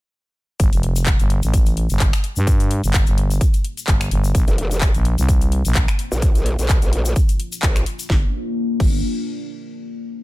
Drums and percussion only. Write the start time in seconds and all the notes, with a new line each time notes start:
0.60 kick, closed hi-hat, shaker
0.73 closed hi-hat, shaker
0.83 open hi-hat
0.96 closed hi-hat, shaker
1.06 kick, clap, closed hi-hat, shaker
1.20 closed hi-hat, shaker
1.30 open hi-hat
1.43 closed hi-hat, shaker
1.54 kick, closed hi-hat, shaker
1.66 closed hi-hat, shaker
1.77 open hi-hat
1.89 closed hi-hat, shaker
2.00 kick, clap, closed hi-hat, shaker
2.13 finger snap, closed hi-hat, shaker
2.24 open hi-hat
2.36 shaker
2.47 kick, closed hi-hat, shaker
2.60 closed hi-hat, shaker
2.71 open hi-hat
2.84 closed hi-hat, shaker
2.94 kick, clap, closed hi-hat, shaker
3.06 closed hi-hat, shaker
3.18 open hi-hat
3.30 closed hi-hat, shaker
3.41 kick, closed hi-hat, shaker
3.54 closed hi-hat, shaker
3.65 open hi-hat
3.77 closed hi-hat, shaker
3.87 kick, clap, closed hi-hat, shaker
4.01 finger snap, closed hi-hat, shaker
4.11 open hi-hat
4.24 shaker
4.35 kick, closed hi-hat, shaker
4.48 closed hi-hat, shaker
4.58 open hi-hat
4.71 closed hi-hat, shaker
4.81 kick, clap, closed hi-hat, shaker
4.95 closed hi-hat, shaker
5.05 open hi-hat
5.18 closed hi-hat, shaker
5.29 kick, closed hi-hat, shaker
5.41 closed hi-hat, shaker
5.52 open hi-hat
5.65 closed hi-hat, shaker
5.75 kick, clap, closed hi-hat, shaker
5.88 finger snap, closed hi-hat, shaker
5.99 open hi-hat
6.12 shaker
6.22 kick, closed hi-hat, shaker
6.35 closed hi-hat, shaker
6.46 open hi-hat
6.59 closed hi-hat, shaker
6.69 kick, clap, closed hi-hat, shaker
6.82 closed hi-hat, shaker
6.93 open hi-hat
7.05 closed hi-hat, shaker
7.16 kick, closed hi-hat, shaker
7.29 closed hi-hat, shaker
7.40 open hi-hat
7.52 closed hi-hat, shaker
7.63 kick, clap, closed hi-hat, shaker
7.76 finger snap, closed hi-hat, shaker
7.86 open hi-hat
7.99 closed hi-hat, shaker
8.10 kick, snare
8.80 kick, crash